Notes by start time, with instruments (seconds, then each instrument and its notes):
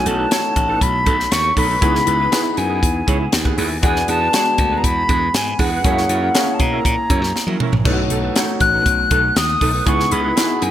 Already playing: grand piano A3 C#4 D#4 E4 F#4 C#5
0.05 slap bass B1, clean electric guitar D#4 A4 B4, flute A5, closed hi-hat
0.18 clean electric guitar D#4 A4 B4
0.31 grand piano A3 C#4 D#4 F#4, clean electric guitar D#4 A4 C#5, snare, closed hi-hat
0.43 muted clean electric guitar stroke
0.56 slap bass A1, muted clean electric guitar stroke, kick, closed hi-hat
0.68 clean electric guitar D#4 A4 B4
0.81 slap bass B1, flute B5, muted clean electric guitar stroke, kick, closed hi-hat
0.94 muted clean electric guitar stroke
1.06 slap bass B1, clean electric guitar D#4 A4 B4, kick, closed hi-hat
1.19 muted clean electric guitar stroke, snare
1.31 slap bass D#2, flute C#6, muted clean electric guitar stroke, snare, closed hi-hat
1.44 muted clean electric guitar stroke
1.56 slap bass B1, clean electric guitar D#4 A4 B4, flute B5, kick, open hi-hat
1.69 clean electric guitar D#4 A4 B4
1.81 slap bass C#2, grand piano B3 D#4 E4 G#4, clean electric guitar E4 G#4 B4, kick, closed hi-hat
1.95 snare
2.06 slap bass C#2, clean electric guitar E4 G#4 B4, closed hi-hat
2.19 clean electric guitar E4 G#4 B4
2.31 grand piano B3 D#4 E4 G#4, clean electric guitar E4 G#4 B4, snare, closed hi-hat
2.44 muted clean electric guitar stroke
2.57 slap bass F#2, flute G#5, muted clean electric guitar stroke, closed hi-hat
2.69 clean electric guitar E4 G#4 B4
2.82 slap bass E2, muted clean electric guitar stroke, kick, closed hi-hat
2.94 muted clean electric guitar stroke
3.07 slap bass C#2, clean electric guitar E4 G#4 C#5, kick, closed hi-hat
3.20 muted clean electric guitar stroke
3.32 slap bass D#2, muted clean electric guitar stroke, snare, closed hi-hat
3.45 clean electric guitar E4 G#4 B4, kick
3.57 slap bass D#2, clean electric guitar E4 G#4 B4, open hi-hat
3.70 muted clean electric guitar stroke
3.82 slap bass E2, grand piano B3 D4 F#4 G#4, clean electric guitar D4 G#4 B4, flute G#5, kick, closed hi-hat
3.96 snare
4.08 slap bass E2, clean electric guitar D4 G#4 B4, flute A5, closed hi-hat
4.21 clean electric guitar D4 G#4 B4
4.32 grand piano G#3 B3 D4 F#4, clean electric guitar D4 G#4 C#5, snare, closed hi-hat
4.46 muted clean electric guitar stroke
4.58 slap bass D2, muted clean electric guitar stroke, kick, closed hi-hat
4.71 clean electric guitar D4 G#4 B4
4.77 flute A#5
4.83 slap bass E2, flute B5, muted clean electric guitar stroke, kick, closed hi-hat
4.96 muted clean electric guitar stroke
5.08 slap bass E2, clean electric guitar D4 G#4 B4, kick, closed hi-hat
5.21 muted clean electric guitar stroke
5.34 slap bass G#2, flute G#5, muted clean electric guitar stroke, snare, closed hi-hat
5.47 muted clean electric guitar stroke
5.59 slap bass E2, clean electric guitar D4 G#4 B4, flute F#5, kick, open hi-hat
5.72 clean electric guitar D4 G#4 B4
5.84 slap bass F#2, grand piano G#3 C#4 E4 G#4, clean electric guitar C#4 E4 A#4, kick, closed hi-hat
5.90 grand piano A#3
5.98 snare
6.09 slap bass F#2, clean electric guitar C#4 E4 A#4, closed hi-hat
6.22 clean electric guitar C#4 E4 A#4
6.34 grand piano A#3 C#4 E4 G#4, clean electric guitar C#4 E4 A#4, snare, closed hi-hat
6.47 muted clean electric guitar stroke
6.54 flute A5
6.60 slap bass B2, flute A#5, muted clean electric guitar stroke, kick, closed hi-hat
6.72 clean electric guitar C#4 E4 A#4
6.85 slap bass A#2, muted clean electric guitar stroke, kick, closed hi-hat
6.97 muted clean electric guitar stroke
7.10 slap bass F#2, clean electric guitar C#4 E4 C#5, kick, closed hi-hat
7.22 slap bass F#2, muted clean electric guitar stroke, snare
7.35 muted clean electric guitar stroke, snare
7.47 slap bass F#3, clean electric guitar C#4 E4 A#4, high tom
7.60 clean electric guitar C#4 E4 A#4, mid tom
7.72 slap bass A#1, muted clean electric guitar stroke, floor tom
7.85 slap bass B1, grand piano A3 C#4 D#4 E4, clean electric guitar D#4 A4 B4, kick, crash
7.92 grand piano F#4
8.10 slap bass B1, clean electric guitar D#4 A4 B4, closed hi-hat
8.23 clean electric guitar D#4 A4 B4
8.35 grand piano A3 C#4 D#4 F#4, clean electric guitar D#4 A4 C#5, snare, closed hi-hat
8.48 muted clean electric guitar stroke
8.60 slap bass A1, flute F#6, muted clean electric guitar stroke, kick, closed hi-hat
8.73 clean electric guitar D#4 A4 B4
8.86 slap bass B1, kick, closed hi-hat
8.98 muted clean electric guitar stroke
9.10 slap bass B1, clean electric guitar D#4 A4 B4, kick, closed hi-hat
9.23 muted clean electric guitar stroke
9.36 slap bass D#2, flute D#6, muted clean electric guitar stroke, snare, closed hi-hat
9.49 muted clean electric guitar stroke
9.61 slap bass B1, clean electric guitar D#4 A4 B4, kick, open hi-hat
9.73 clean electric guitar D#4 A4 B4
9.85 slap bass C#2, grand piano B3 D#4 E4 G#4, clean electric guitar E4 G#4 B4, flute C#6, kick, closed hi-hat
10.00 snare
10.11 slap bass C#2, clean electric guitar E4 G#4 B4, flute B5, closed hi-hat
10.23 clean electric guitar E4 G#4 B4
10.36 grand piano B3 D#4 E4 F#4, clean electric guitar E4 G#4 B4, snare, closed hi-hat
10.43 grand piano G#4
10.49 muted clean electric guitar stroke
10.61 slap bass F#2, flute G#5, muted clean electric guitar stroke, closed hi-hat